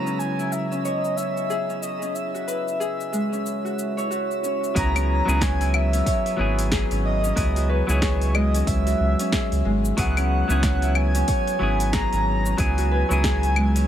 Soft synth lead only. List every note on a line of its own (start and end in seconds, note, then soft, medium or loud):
0.00 0.20 A#5 loud
0.19 0.53 G#5 loud
0.52 0.79 E5 medium
0.79 0.86 E5 medium
0.84 1.16 D#5 medium
1.16 1.84 E5 loud
1.82 2.16 D#5 medium
2.15 4.11 E5 medium
4.77 5.07 A#5 loud
5.09 5.43 A#5 loud
5.42 5.76 G#5 loud
5.74 6.72 E5 medium
7.04 7.71 D#5 loud
7.69 8.36 C#5 loud
8.34 8.68 D#5 loud
8.67 9.65 E5 loud
9.98 10.97 F#5 loud
10.96 11.92 G#5 loud
11.93 12.53 A#5 loud
12.53 12.59 A#5 medium
12.58 13.88 G#5 loud